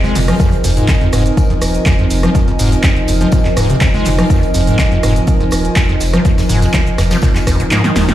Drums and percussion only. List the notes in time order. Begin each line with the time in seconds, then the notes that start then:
0.04 snare, closed hi-hat
0.15 snare, open hi-hat, shaker
0.28 cross-stick, closed hi-hat, shaker
0.40 kick, closed hi-hat, tambourine, shaker
0.53 closed hi-hat
0.64 open hi-hat, tambourine, shaker
0.77 closed hi-hat, shaker
0.88 kick, snare, clap, closed hi-hat, tambourine, shaker
1.01 closed hi-hat
1.13 cross-stick, open hi-hat, tambourine, shaker
1.26 closed hi-hat, shaker
1.37 kick, closed hi-hat, tambourine, shaker
1.50 closed hi-hat
1.62 cross-stick, open hi-hat, tambourine, shaker
1.74 closed hi-hat, shaker
1.86 kick, snare, clap, closed hi-hat, tambourine, shaker
1.99 closed hi-hat
2.10 snare, open hi-hat, tambourine, shaker
2.23 cross-stick, closed hi-hat, shaker
2.35 kick, closed hi-hat, tambourine, shaker
2.48 closed hi-hat
2.59 open hi-hat, tambourine, shaker
2.72 closed hi-hat, shaker
2.84 kick, snare, clap, closed hi-hat, tambourine, shaker
2.97 closed hi-hat
3.08 open hi-hat, tambourine, shaker
3.21 closed hi-hat, shaker
3.32 kick, closed hi-hat, tambourine, shaker
3.45 snare, clap, closed hi-hat
3.57 cross-stick, open hi-hat, tambourine, shaker
3.69 closed hi-hat, shaker
3.81 kick, snare, clap, closed hi-hat, tambourine, shaker
3.94 snare, closed hi-hat
4.05 snare, open hi-hat, shaker
4.19 cross-stick, closed hi-hat, shaker
4.30 kick, closed hi-hat, tambourine, shaker
4.43 closed hi-hat
4.54 open hi-hat, tambourine, shaker
4.67 closed hi-hat, shaker
4.79 kick, snare, clap, closed hi-hat, tambourine, shaker
4.92 closed hi-hat
5.03 cross-stick, open hi-hat, tambourine, shaker
5.16 closed hi-hat, shaker
5.27 kick, closed hi-hat, tambourine, shaker
5.40 closed hi-hat
5.51 cross-stick, open hi-hat, tambourine, shaker
5.65 closed hi-hat, shaker
5.76 kick, snare, clap, closed hi-hat, tambourine, shaker
5.89 closed hi-hat
6.00 snare, open hi-hat, tambourine, shaker
6.13 cross-stick, closed hi-hat, shaker
6.25 kick, closed hi-hat, tambourine, shaker
6.38 snare, closed hi-hat, tambourine, shaker
6.49 open hi-hat, shaker
6.62 closed hi-hat, tambourine, shaker
6.73 kick, snare, clap, closed hi-hat, tambourine, shaker
6.87 closed hi-hat, shaker
6.98 cross-stick, snare, open hi-hat, tambourine, shaker
7.11 snare, closed hi-hat, tambourine, shaker
7.22 kick, snare, closed hi-hat, tambourine, shaker
7.35 snare, clap, closed hi-hat, tambourine, shaker
7.47 kick, cross-stick, open hi-hat, tambourine, shaker
7.60 closed hi-hat, shaker
7.71 snare, clap, closed hi-hat, tambourine, shaker
7.84 snare, closed hi-hat, shaker
7.96 snare, open hi-hat, tambourine, shaker
8.09 snare, closed hi-hat, shaker